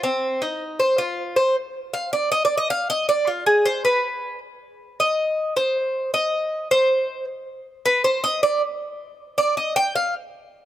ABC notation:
X:1
M:4/4
L:1/8
Q:1/4=157
K:Fdor
V:1 name="Cuban tres"
C2 E2 c F2 c | [K:Eb] z2 f d (3e d e f e | d F A c =B3 z | z2 e3 c3 |
e3 c3 z2 | z =B c e d z3 | z d e g f z3 |]